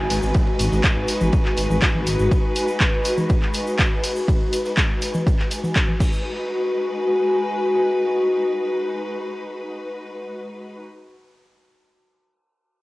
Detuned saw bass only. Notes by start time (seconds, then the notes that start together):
0.10 G#1
0.23 G#1
0.59 G#1
0.72 G#1
0.96 G#1
1.21 G#1
1.58 G#1
1.70 G#1
1.95 G#1
2.07 G#1
2.19 G#1